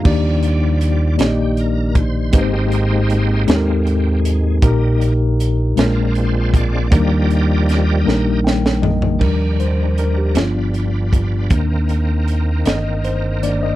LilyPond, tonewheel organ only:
<<
  \new Staff \with { instrumentName = "Tonewheel organ" } { \time 6/8 \key ees \major \tempo 4. = 52 << { r4. g'8 bes'8 c''8 | c''4. r4. | r4. bes'8 c''8 d''8 | ees''2 r4 |
<ees g d' a' bes'>4. <g d' f' aes' b'>4. | <ees bes c' bes'>2. | } \\ { r2. | <ees' g'>4. r4. | r4. f'4. | <g' bes'>2 r4 |
r2. | r2. | } >> }
  \new Staff \with { instrumentName = "Tonewheel organ" } { \time 6/8 \key ees \major <f g d''>4. r4. | <aes bes c'>2 <bes c' g'>8 r8 | <g bes ees'>8 r4 <aes c' d'>4. | <f g d''>4. r4. |
r2. | r2. | }
>>